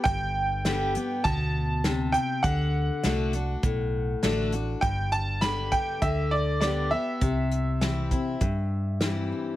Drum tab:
HH |x-xxx-xx|x-xxx-xx|xxxxx-x-|xxxxx-x-|
SD |--o---o-|--o---o-|--o---o-|--o---o-|
BD |o---o---|o---o---|o--oo---|o--oo---|